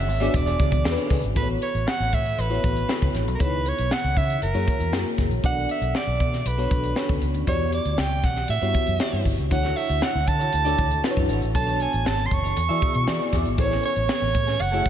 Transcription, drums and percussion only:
0.09 open hi-hat medium
0.22 closed hi-hat medium
0.34 kick medium
0.34 closed hi-hat medium
0.47 closed hi-hat medium
0.60 kick medium
0.60 closed hi-hat medium
0.72 kick medium
0.72 closed hi-hat medium
0.85 snare loud
0.97 closed hi-hat medium
1.10 kick medium
1.10 open hi-hat medium
1.24 closed hi-hat soft
1.36 kick loud
1.36 closed hi-hat medium
1.62 closed hi-hat medium
1.74 closed hi-hat soft
1.88 snare loud
2.00 closed hi-hat soft
2.13 kick medium
2.13 closed hi-hat medium
2.26 closed hi-hat soft
2.38 closed hi-hat medium
2.64 kick medium
2.64 closed hi-hat medium
2.76 closed hi-hat medium
2.89 snare loud
3.02 kick medium
3.15 snare soft
3.15 closed hi-hat medium
3.28 closed hi-hat soft
3.40 kick loud
3.40 closed hi-hat medium
3.66 closed hi-hat medium
3.78 closed hi-hat medium
3.91 snare loud
4.17 kick medium
4.17 closed hi-hat medium
4.30 closed hi-hat soft
4.42 closed hi-hat medium
4.68 kick medium
4.68 closed hi-hat medium
4.80 closed hi-hat medium
4.93 snare loud
5.18 kick medium
5.18 snare soft
5.18 closed hi-hat medium
5.31 closed hi-hat soft
5.44 kick loud
5.44 closed hi-hat medium
5.69 closed hi-hat medium
5.82 closed hi-hat medium
5.95 snare loud
6.20 kick medium
6.20 closed hi-hat medium
6.33 snare soft
6.33 closed hi-hat soft
6.46 closed hi-hat medium
6.59 closed hi-hat soft
6.71 kick medium
6.71 closed hi-hat medium
6.84 closed hi-hat soft
6.96 snare loud
7.09 kick medium
7.21 closed hi-hat medium
7.34 closed hi-hat soft
7.47 kick loud
7.47 closed hi-hat medium
7.72 closed hi-hat medium
7.85 closed hi-hat medium
7.98 snare loud
8.11 closed hi-hat soft
8.23 kick medium
8.23 snare soft
8.23 closed hi-hat medium
8.36 snare soft
8.36 closed hi-hat soft
8.48 closed hi-hat medium
8.62 closed hi-hat soft
8.74 kick medium
8.74 closed hi-hat medium
8.87 closed hi-hat soft
9.00 snare loud
9.13 closed hi-hat soft
9.25 kick medium
9.25 open hi-hat medium
9.38 closed hi-hat soft
9.51 kick loud
9.51 closed hi-hat medium
9.64 snare soft
9.76 closed hi-hat medium
9.89 closed hi-hat medium
10.02 snare loud
10.28 kick medium
10.28 closed hi-hat medium
10.41 closed hi-hat soft
10.53 closed hi-hat medium
10.66 closed hi-hat soft
10.78 kick medium
10.78 closed hi-hat medium
10.91 closed hi-hat medium
11.04 snare loud
11.17 kick medium
11.29 closed hi-hat medium
11.42 closed hi-hat soft
11.55 kick loud
11.55 closed hi-hat medium
11.68 closed hi-hat soft
11.80 closed hi-hat medium
11.93 closed hi-hat medium
12.06 snare loud
12.31 kick medium
12.31 closed hi-hat medium
12.44 closed hi-hat medium
12.57 closed hi-hat medium
12.82 kick loud
12.82 closed hi-hat medium
12.95 closed hi-hat medium
13.08 snare loud
13.33 kick medium
13.33 snare soft
13.33 closed hi-hat medium
13.46 closed hi-hat soft
13.58 kick loud
13.58 closed hi-hat medium
13.72 snare soft
13.72 closed hi-hat soft
13.83 closed hi-hat medium
13.96 closed hi-hat medium
14.09 snare loud
14.35 kick medium
14.35 closed hi-hat medium
14.48 snare soft
14.48 closed hi-hat soft
14.60 closed hi-hat medium
14.86 kick medium
14.86 closed hi-hat medium

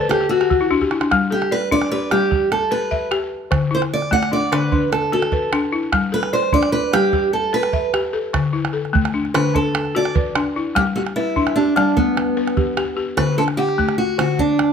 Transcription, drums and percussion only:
0.11 calabash click medium
0.41 calabash click soft
0.51 calabash thump medium
0.71 calabash thump soft
0.81 calabash thump soft
0.91 calabash click soft
1.01 calabash click medium
1.12 calabash thump soft
1.12 calabash click medium
1.42 calabash click soft
1.62 calabash click soft
1.72 calabash thump soft
1.82 calabash click soft
2.11 calabash click medium
2.32 calabash thump medium
2.52 calabash click medium
2.72 calabash click soft
2.92 calabash thump medium
3.12 calabash click medium
3.52 calabash thump medium
3.52 calabash click medium
3.82 calabash click soft
4.02 calabash click soft
4.12 calabash thump medium
4.23 calabash click medium
4.53 calabash click medium
4.72 calabash thump medium
4.93 calabash click medium
5.13 calabash click soft
5.22 calabash click soft
5.32 calabash thump medium
5.53 calabash click medium
5.93 calabash thump medium
5.93 calabash click medium
6.23 calabash click medium
6.43 calabash click soft
6.53 calabash thump medium
6.63 calabash click medium
6.94 calabash click medium
7.13 calabash thump medium
7.54 calabash click soft
7.63 calabash click medium
7.73 calabash thump medium
7.94 calabash click medium
8.34 calabash thump medium
8.34 calabash click medium
8.65 calabash click medium
8.85 calabash click soft
8.95 calabash thump medium
9.05 calabash click medium
9.25 calabash click soft
9.35 calabash click medium
9.55 calabash thump medium
9.75 calabash click medium
9.85 calabash click soft
10.05 calabash click soft
10.16 calabash thump medium
10.35 calabash click medium
10.76 calabash thump medium
10.76 calabash click medium
11.07 calabash click soft
11.36 calabash thump medium
11.47 calabash click medium
11.77 calabash click medium
11.97 calabash thump medium
12.17 calabash click medium
12.37 calabash click soft
12.47 calabash click soft
12.57 calabash thump medium
12.77 calabash click medium
13.18 calabash thump medium
13.18 calabash click medium
13.48 calabash click soft
13.69 calabash click soft
13.79 calabash thump medium
13.89 calabash click soft
14.19 calabash click medium
14.39 calabash thump medium
14.59 calabash click medium

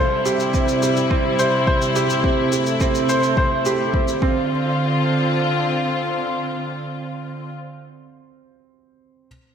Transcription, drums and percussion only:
0.26 shaker soft
0.40 shaker soft
0.54 kick medium
0.54 shaker soft
0.68 shaker soft
0.83 shaker soft
0.97 shaker soft
1.11 kick medium
1.39 shaker soft
1.67 kick medium
1.82 shaker soft
1.96 shaker soft
2.10 shaker soft
2.24 kick medium
2.52 shaker soft
2.66 shaker soft
2.80 kick medium
2.80 shaker soft
2.95 shaker soft
3.09 shaker soft
3.23 shaker soft
3.37 kick medium
3.66 shaker soft
3.94 kick medium
4.08 shaker soft
4.22 kick medium

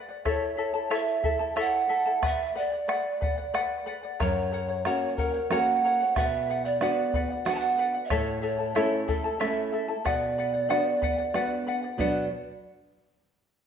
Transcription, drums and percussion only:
0.26 bombo rim medium
0.26 bombo low medium
0.75 bombo rim soft
0.91 bombo rim medium
1.24 bombo low medium
1.57 bombo rim medium
2.23 bombo rim medium
2.23 bombo low medium
2.39 bombo rim soft
2.55 bombo rim soft
2.73 bombo rim soft
2.89 bombo rim medium
3.22 bombo low medium
3.55 bombo rim medium
4.20 bombo rim medium
4.20 bombo low medium
4.69 bombo rim soft
4.85 bombo rim medium
5.18 bombo low medium
5.51 bombo rim medium
6.16 bombo rim medium
6.16 bombo low medium
6.65 bombo rim soft
6.81 bombo rim medium
7.14 bombo low medium
7.46 bombo rim medium
8.10 bombo rim medium
8.10 bombo low medium
8.60 bombo rim soft
8.76 bombo rim medium
9.09 bombo low medium
9.41 bombo rim medium
10.06 bombo rim medium
10.06 bombo low medium
10.38 bombo rim soft
10.71 bombo rim medium
10.87 bombo rim soft
11.02 bombo rim soft
11.02 bombo low medium
11.34 bombo rim medium
11.99 bombo low medium

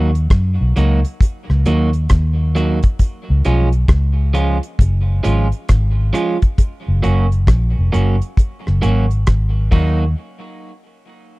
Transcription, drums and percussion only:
0.15 closed hi-hat medium
0.30 kick loud
0.30 cross-stick loud
0.30 closed hi-hat medium
0.76 closed hi-hat medium
1.05 closed hi-hat medium
1.21 kick loud
1.21 closed hi-hat medium
1.50 cross-stick medium
1.66 closed hi-hat medium
1.93 closed hi-hat soft
2.09 kick loud
2.09 cross-stick loud
2.09 closed hi-hat loud
2.56 closed hi-hat medium
2.83 kick loud
2.83 closed hi-hat medium
2.99 kick loud
2.99 closed hi-hat medium
3.45 closed hi-hat medium
3.72 closed hi-hat soft
3.88 kick loud
3.88 cross-stick loud
3.88 closed hi-hat medium
4.35 closed hi-hat medium
4.63 closed hi-hat medium
4.79 kick loud
4.79 closed hi-hat medium
5.24 closed hi-hat medium
5.52 closed hi-hat soft
5.69 kick loud
5.69 cross-stick loud
5.69 closed hi-hat medium
6.14 cross-stick medium
6.14 closed hi-hat medium
6.42 kick medium
6.42 closed hi-hat medium
6.58 kick loud
6.58 closed hi-hat loud
7.04 closed hi-hat medium
7.32 closed hi-hat soft
7.47 kick loud
7.47 cross-stick loud
7.47 closed hi-hat medium
7.94 closed hi-hat medium
8.22 closed hi-hat soft
8.37 kick loud
8.37 closed hi-hat medium
8.67 cross-stick medium
8.83 closed hi-hat medium
9.11 closed hi-hat soft
9.27 kick loud
9.27 cross-stick loud
9.27 closed hi-hat medium
9.72 kick loud
9.72 crash medium

